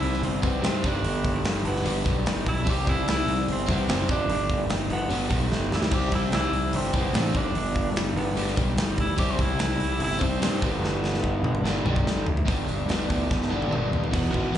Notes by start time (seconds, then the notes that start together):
Already playing: C3 G3 C4 E4
0.01 C2, open hi-hat
0.14 snare
0.21 G1 C4, open hi-hat
0.42 C2 C3 G3 B3 C4, kick, open hi-hat
0.61 G2 C3 G3 C4, snare, open hi-hat
0.82 G1 G2 D3 G3 D4, kick, open hi-hat
1.04 G1, open hi-hat
1.25 kick, open hi-hat
1.44 G1, snare, open hi-hat
1.65 G1 B3, open hi-hat
1.76 snare
1.84 G1 G2 D3 G3, open hi-hat
2.04 B1 G2 D3 G3, kick, open hi-hat
2.25 G1, snare, open hi-hat
2.46 B1 E4, kick, open hi-hat
2.64 C2 C3 G3 C4, kick, open hi-hat
2.70 G4
2.87 C2 E4, kick, open hi-hat
3.07 C2 E4, snare, open hi-hat
3.27 C2, open hi-hat
3.48 G1, open hi-hat
3.52 C4
3.66 C2 C3 G3 C4, kick, open hi-hat
3.70 B3
3.87 F#1 C3 G3 C4, snare, open hi-hat
4.08 G1 G2 D3 G3 D4, kick, open hi-hat
4.30 G1, open hi-hat
4.49 kick, open hi-hat
4.70 G1, snare, open hi-hat
4.90 G1 B3, open hi-hat
5.09 G1 G2 D3 G3, open hi-hat
5.28 B1 G2 D3 G3, kick, open hi-hat
5.51 G1, snare
5.71 D2 E4, snare
5.83 snare
5.91 C2 C3 G3 C4 G4, kick, crash
6.12 C2 E4, kick, open hi-hat
6.32 C2 E4, snare, open hi-hat
6.52 C2, open hi-hat
6.73 G1 C4, open hi-hat
6.93 C2 C3 G3 C4, kick, open hi-hat
6.98 B3
7.13 A1 C3 G3 C4, snare, open hi-hat
7.19 C4
7.33 G1 G2 D3 G3 D4, kick, open hi-hat
7.55 G1, open hi-hat
7.76 kick, open hi-hat
7.95 G1, snare, open hi-hat
8.15 G1 B3, open hi-hat
8.36 G1 G2 D3 G3, open hi-hat
8.48 snare
8.56 B1 G2 D3 G3, kick, open hi-hat
8.77 G1, snare, open hi-hat
8.98 D2 E4, kick, open hi-hat
9.17 C2 C3 G3 C4 G4, kick, open hi-hat
9.31 C4
9.39 C2 E4, kick, open hi-hat
9.58 C2, snare, open hi-hat
9.79 C2, open hi-hat
9.99 G1, open hi-hat
10.04 E4
10.12 snare
10.19 C2 C3 G3 C4, kick, open hi-hat
10.40 G2 C3 G3 C4, snare, open hi-hat
10.61 G1 G2 D3 G3 B3, kick, open hi-hat
10.82 G1, snare
11.04 snare
11.14 snare
11.24 G1, kick
11.43 G1, mid tom
11.55 mid tom
11.63 G1 G2 D3 G3, snare
11.85 B1 G2 D3 G3, mid tom
11.96 kick
12.07 G1, snare
12.27 D2, floor tom
12.37 floor tom
12.45 G1 G2 D3 G3 B3 D4, kick, open hi-hat
12.66 G1 G3 B3 D4, open hi-hat
12.88 G1 G2 D3 G3 B3 D4, snare, open hi-hat
13.09 D2 G3 B3 D4, kick, open hi-hat
13.31 G1, kick, snare
13.42 snare
13.49 G1 G3 B3 D4
13.62 high tom
13.69 G1 D3 G3 B3 D4, mid tom
13.91 D#2, floor tom
14.04 floor tom
14.11 E1 E2 B2 E3 B3, kick, crash
14.32 G#1 E2 B2 E3, kick
14.52 E2 B2 E3, open hi-hat